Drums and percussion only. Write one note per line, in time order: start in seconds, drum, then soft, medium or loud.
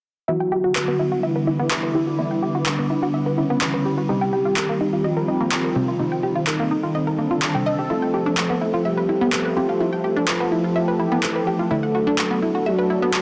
0.76 clap loud
1.71 clap loud
2.66 clap loud
3.61 clap loud
4.57 clap loud
5.52 clap loud
6.47 clap loud
7.42 clap loud
8.37 clap loud
9.33 clap loud
10.28 clap loud
11.23 clap loud
12.18 clap loud
13.14 clap loud